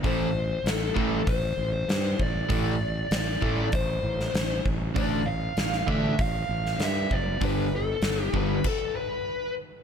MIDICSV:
0, 0, Header, 1, 5, 480
1, 0, Start_track
1, 0, Key_signature, 0, "minor"
1, 0, Tempo, 614754
1, 28, Time_signature, 4, 2, 24, 8
1, 7678, End_track
2, 0, Start_track
2, 0, Title_t, "Lead electric guitar"
2, 0, Program_c, 0, 29
2, 39, Note_on_c, 0, 72, 84
2, 527, Note_on_c, 0, 69, 79
2, 528, Note_off_c, 0, 72, 0
2, 999, Note_on_c, 0, 72, 80
2, 1012, Note_off_c, 0, 69, 0
2, 1330, Note_off_c, 0, 72, 0
2, 1350, Note_on_c, 0, 72, 87
2, 1721, Note_off_c, 0, 72, 0
2, 1731, Note_on_c, 0, 74, 92
2, 2449, Note_off_c, 0, 74, 0
2, 2459, Note_on_c, 0, 74, 96
2, 2893, Note_off_c, 0, 74, 0
2, 2926, Note_on_c, 0, 72, 72
2, 3608, Note_off_c, 0, 72, 0
2, 3872, Note_on_c, 0, 74, 99
2, 4107, Note_on_c, 0, 77, 105
2, 4119, Note_off_c, 0, 74, 0
2, 4586, Note_off_c, 0, 77, 0
2, 4589, Note_on_c, 0, 76, 91
2, 4838, Note_off_c, 0, 76, 0
2, 4851, Note_on_c, 0, 77, 89
2, 5336, Note_off_c, 0, 77, 0
2, 5341, Note_on_c, 0, 76, 90
2, 5562, Note_on_c, 0, 74, 83
2, 5574, Note_off_c, 0, 76, 0
2, 5804, Note_off_c, 0, 74, 0
2, 5812, Note_on_c, 0, 71, 85
2, 6026, Note_off_c, 0, 71, 0
2, 6054, Note_on_c, 0, 69, 89
2, 6421, Note_off_c, 0, 69, 0
2, 6421, Note_on_c, 0, 67, 89
2, 6529, Note_off_c, 0, 67, 0
2, 6532, Note_on_c, 0, 71, 81
2, 6767, Note_off_c, 0, 71, 0
2, 6770, Note_on_c, 0, 69, 73
2, 6994, Note_off_c, 0, 69, 0
2, 6997, Note_on_c, 0, 71, 70
2, 7443, Note_off_c, 0, 71, 0
2, 7678, End_track
3, 0, Start_track
3, 0, Title_t, "Overdriven electric guitar"
3, 0, Program_c, 1, 29
3, 24, Note_on_c, 1, 45, 80
3, 33, Note_on_c, 1, 52, 76
3, 35, Note_on_c, 1, 57, 90
3, 218, Note_off_c, 1, 45, 0
3, 223, Note_off_c, 1, 52, 0
3, 223, Note_off_c, 1, 57, 0
3, 740, Note_on_c, 1, 52, 96
3, 743, Note_on_c, 1, 45, 88
3, 748, Note_on_c, 1, 57, 87
3, 937, Note_off_c, 1, 52, 0
3, 938, Note_off_c, 1, 45, 0
3, 941, Note_off_c, 1, 57, 0
3, 1945, Note_on_c, 1, 45, 86
3, 1954, Note_on_c, 1, 52, 88
3, 1954, Note_on_c, 1, 57, 90
3, 2139, Note_off_c, 1, 45, 0
3, 2144, Note_off_c, 1, 52, 0
3, 2144, Note_off_c, 1, 57, 0
3, 2664, Note_on_c, 1, 52, 96
3, 2665, Note_on_c, 1, 45, 85
3, 2670, Note_on_c, 1, 57, 106
3, 2859, Note_off_c, 1, 45, 0
3, 2859, Note_off_c, 1, 52, 0
3, 2862, Note_off_c, 1, 57, 0
3, 3872, Note_on_c, 1, 50, 82
3, 3880, Note_on_c, 1, 57, 85
3, 3885, Note_on_c, 1, 62, 101
3, 4064, Note_off_c, 1, 50, 0
3, 4068, Note_off_c, 1, 57, 0
3, 4070, Note_off_c, 1, 62, 0
3, 4595, Note_on_c, 1, 50, 90
3, 4604, Note_on_c, 1, 57, 92
3, 4610, Note_on_c, 1, 62, 92
3, 4786, Note_off_c, 1, 50, 0
3, 4790, Note_off_c, 1, 57, 0
3, 4793, Note_off_c, 1, 62, 0
3, 5788, Note_on_c, 1, 43, 79
3, 5793, Note_on_c, 1, 55, 91
3, 5795, Note_on_c, 1, 50, 91
3, 5982, Note_off_c, 1, 43, 0
3, 5984, Note_off_c, 1, 55, 0
3, 5985, Note_off_c, 1, 50, 0
3, 6507, Note_on_c, 1, 43, 86
3, 6511, Note_on_c, 1, 50, 91
3, 6512, Note_on_c, 1, 55, 95
3, 6701, Note_off_c, 1, 43, 0
3, 6704, Note_off_c, 1, 50, 0
3, 6704, Note_off_c, 1, 55, 0
3, 7678, End_track
4, 0, Start_track
4, 0, Title_t, "Fingered electric bass"
4, 0, Program_c, 2, 33
4, 32, Note_on_c, 2, 33, 91
4, 427, Note_off_c, 2, 33, 0
4, 500, Note_on_c, 2, 33, 85
4, 702, Note_off_c, 2, 33, 0
4, 754, Note_on_c, 2, 33, 86
4, 950, Note_off_c, 2, 33, 0
4, 993, Note_on_c, 2, 33, 79
4, 1189, Note_off_c, 2, 33, 0
4, 1230, Note_on_c, 2, 33, 83
4, 1428, Note_off_c, 2, 33, 0
4, 1468, Note_on_c, 2, 43, 79
4, 1667, Note_off_c, 2, 43, 0
4, 1712, Note_on_c, 2, 33, 77
4, 1909, Note_off_c, 2, 33, 0
4, 1954, Note_on_c, 2, 33, 88
4, 2348, Note_off_c, 2, 33, 0
4, 2430, Note_on_c, 2, 33, 82
4, 2628, Note_off_c, 2, 33, 0
4, 2673, Note_on_c, 2, 33, 81
4, 2870, Note_off_c, 2, 33, 0
4, 2915, Note_on_c, 2, 33, 79
4, 3112, Note_off_c, 2, 33, 0
4, 3147, Note_on_c, 2, 33, 84
4, 3347, Note_off_c, 2, 33, 0
4, 3389, Note_on_c, 2, 33, 82
4, 3588, Note_off_c, 2, 33, 0
4, 3634, Note_on_c, 2, 33, 82
4, 3831, Note_off_c, 2, 33, 0
4, 3874, Note_on_c, 2, 33, 86
4, 4269, Note_off_c, 2, 33, 0
4, 4350, Note_on_c, 2, 33, 81
4, 4549, Note_off_c, 2, 33, 0
4, 4587, Note_on_c, 2, 33, 88
4, 4787, Note_off_c, 2, 33, 0
4, 4832, Note_on_c, 2, 33, 76
4, 5030, Note_off_c, 2, 33, 0
4, 5069, Note_on_c, 2, 33, 87
4, 5269, Note_off_c, 2, 33, 0
4, 5302, Note_on_c, 2, 43, 76
4, 5504, Note_off_c, 2, 43, 0
4, 5553, Note_on_c, 2, 30, 87
4, 5751, Note_off_c, 2, 30, 0
4, 5788, Note_on_c, 2, 31, 88
4, 6186, Note_off_c, 2, 31, 0
4, 6262, Note_on_c, 2, 31, 82
4, 6464, Note_off_c, 2, 31, 0
4, 6508, Note_on_c, 2, 31, 89
4, 6708, Note_off_c, 2, 31, 0
4, 7678, End_track
5, 0, Start_track
5, 0, Title_t, "Drums"
5, 34, Note_on_c, 9, 36, 109
5, 40, Note_on_c, 9, 46, 45
5, 112, Note_off_c, 9, 36, 0
5, 118, Note_off_c, 9, 46, 0
5, 517, Note_on_c, 9, 46, 48
5, 524, Note_on_c, 9, 38, 100
5, 595, Note_off_c, 9, 46, 0
5, 602, Note_off_c, 9, 38, 0
5, 753, Note_on_c, 9, 36, 75
5, 831, Note_off_c, 9, 36, 0
5, 993, Note_on_c, 9, 36, 101
5, 994, Note_on_c, 9, 46, 48
5, 1071, Note_off_c, 9, 36, 0
5, 1072, Note_off_c, 9, 46, 0
5, 1478, Note_on_c, 9, 46, 44
5, 1485, Note_on_c, 9, 38, 96
5, 1556, Note_off_c, 9, 46, 0
5, 1563, Note_off_c, 9, 38, 0
5, 1714, Note_on_c, 9, 36, 77
5, 1792, Note_off_c, 9, 36, 0
5, 1950, Note_on_c, 9, 46, 53
5, 1953, Note_on_c, 9, 36, 106
5, 2028, Note_off_c, 9, 46, 0
5, 2031, Note_off_c, 9, 36, 0
5, 2429, Note_on_c, 9, 46, 51
5, 2436, Note_on_c, 9, 38, 107
5, 2507, Note_off_c, 9, 46, 0
5, 2514, Note_off_c, 9, 38, 0
5, 2673, Note_on_c, 9, 36, 75
5, 2751, Note_off_c, 9, 36, 0
5, 2906, Note_on_c, 9, 46, 51
5, 2912, Note_on_c, 9, 36, 103
5, 2984, Note_off_c, 9, 46, 0
5, 2990, Note_off_c, 9, 36, 0
5, 3278, Note_on_c, 9, 38, 29
5, 3356, Note_off_c, 9, 38, 0
5, 3393, Note_on_c, 9, 46, 45
5, 3400, Note_on_c, 9, 38, 97
5, 3471, Note_off_c, 9, 46, 0
5, 3478, Note_off_c, 9, 38, 0
5, 3635, Note_on_c, 9, 36, 75
5, 3713, Note_off_c, 9, 36, 0
5, 3872, Note_on_c, 9, 46, 44
5, 3874, Note_on_c, 9, 36, 113
5, 3950, Note_off_c, 9, 46, 0
5, 3952, Note_off_c, 9, 36, 0
5, 4348, Note_on_c, 9, 46, 47
5, 4355, Note_on_c, 9, 38, 95
5, 4426, Note_off_c, 9, 46, 0
5, 4433, Note_off_c, 9, 38, 0
5, 4472, Note_on_c, 9, 38, 32
5, 4550, Note_off_c, 9, 38, 0
5, 4591, Note_on_c, 9, 36, 76
5, 4669, Note_off_c, 9, 36, 0
5, 4831, Note_on_c, 9, 46, 49
5, 4833, Note_on_c, 9, 36, 99
5, 4909, Note_off_c, 9, 46, 0
5, 4911, Note_off_c, 9, 36, 0
5, 5198, Note_on_c, 9, 38, 27
5, 5276, Note_off_c, 9, 38, 0
5, 5306, Note_on_c, 9, 46, 47
5, 5313, Note_on_c, 9, 38, 94
5, 5384, Note_off_c, 9, 46, 0
5, 5391, Note_off_c, 9, 38, 0
5, 5551, Note_on_c, 9, 36, 77
5, 5629, Note_off_c, 9, 36, 0
5, 5788, Note_on_c, 9, 46, 53
5, 5790, Note_on_c, 9, 36, 103
5, 5866, Note_off_c, 9, 46, 0
5, 5868, Note_off_c, 9, 36, 0
5, 6260, Note_on_c, 9, 46, 52
5, 6267, Note_on_c, 9, 38, 106
5, 6338, Note_off_c, 9, 46, 0
5, 6345, Note_off_c, 9, 38, 0
5, 6510, Note_on_c, 9, 36, 72
5, 6588, Note_off_c, 9, 36, 0
5, 6748, Note_on_c, 9, 49, 75
5, 6751, Note_on_c, 9, 36, 97
5, 6826, Note_off_c, 9, 49, 0
5, 6829, Note_off_c, 9, 36, 0
5, 7678, End_track
0, 0, End_of_file